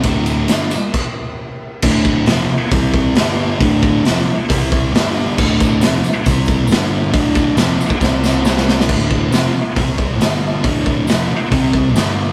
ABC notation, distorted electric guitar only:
X:1
M:4/4
L:1/8
Q:1/4=136
K:Clyd
V:1 name="Distorted electric guitar" clef=bass
[D,,A,,D,]2 [G,,D,G,] z4 z | [D,,A,,D,]2 [=F,,C,=F,] z [C,G,C]2 [G,,D,G,]2 | [D,,A,,D,]2 [=F,,C,=F,] z [C,G,C]2 [G,,D,G,]2 | [D,,A,,D,]2 [=F,,C,=F,] z [C,G,C]2 [G,,D,G,]2 |
[D,,A,,D,]2 [=F,,C,=F,] z [C,G,C]2 [C,G,C]2 | [D,,A,,D,]2 [=F,,C,=F,] z [C,G,C]2 [G,,D,G,]2 | [D,,A,,D,]2 [=F,,C,=F,] z [C,G,C]2 [G,,D,G,]2 |]